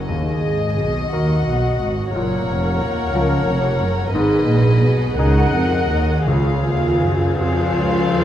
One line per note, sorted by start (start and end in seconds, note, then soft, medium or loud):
0.00 0.11 C#4 soft
0.00 0.11 F#4 soft
0.00 0.12 A#4 soft
0.08 0.41 D#2 soft
0.08 0.42 D#2 soft
0.08 0.43 D#2 soft
0.08 1.09 G#4 soft
0.08 1.08 D#5 soft
0.08 2.10 D#5 soft
0.44 0.78 G#1 soft
0.44 0.78 G#2 soft
0.78 1.13 B1 soft
0.78 1.13 B2 soft
1.13 1.46 D#2 soft
1.13 1.46 D#3 soft
1.13 2.10 F#4 soft
1.13 2.14 F#4 soft
1.13 2.10 A#4 soft
1.13 2.12 F#5 soft
1.46 1.80 B1 soft
1.46 1.80 B2 soft
1.81 2.14 G#1 soft
1.81 2.14 G#2 soft
2.13 2.47 F#1 soft
2.13 2.47 F#2 soft
2.13 2.79 A#2 soft
2.13 4.15 A#4 soft
2.13 4.11 C#5 soft
2.13 4.10 F#5 soft
2.47 2.80 F1 soft
2.47 2.80 F2 soft
2.80 3.14 D#2 soft
3.13 3.47 C#2 soft
3.13 3.47 C#2 medium
3.13 4.11 F3 soft
3.13 4.12 A#4 soft
3.48 3.81 F1 medium
3.48 3.81 F2 soft
3.81 4.15 F#1 medium
3.81 4.15 F#2 soft
4.14 4.48 G#1 medium
4.14 4.47 G#2 soft
4.14 4.48 G#2 medium
4.14 5.16 G#4 medium
4.14 5.15 B4 medium
4.14 5.17 D#5 soft
4.48 4.82 A#1 medium
4.48 4.82 A#2 medium
4.83 5.18 B1 medium
4.83 5.18 B2 soft
5.17 5.53 C#2 medium
5.17 5.54 C#3 medium
5.17 6.24 D#4 soft
5.17 6.24 G#4 soft
5.17 6.27 A#4 medium
5.17 6.25 D#5 medium
5.17 6.25 F#5 medium
5.54 5.89 F2 soft
5.54 5.90 F3 soft
5.90 6.26 D#2 soft
5.90 6.27 D#3 soft
6.27 6.64 C#2 soft
6.27 7.01 C#2 soft
6.27 6.65 C#3 soft
6.27 7.39 F4 soft
6.27 8.24 G#4 soft
6.27 7.39 F5 soft
6.65 7.02 D#2 soft
6.65 7.02 D#3 soft
7.02 7.40 F#2 soft
7.02 7.41 F#3 soft
7.40 7.79 F2 soft
7.40 8.24 F3 medium
7.40 7.79 F3 soft
7.40 8.24 F4 medium
7.40 8.24 F4 soft
7.40 8.24 G#4 soft
7.40 8.24 F5 medium
7.79 8.18 C#2 soft
7.79 8.18 C#3 soft
8.18 8.24 D#2 soft
8.18 8.24 D#3 soft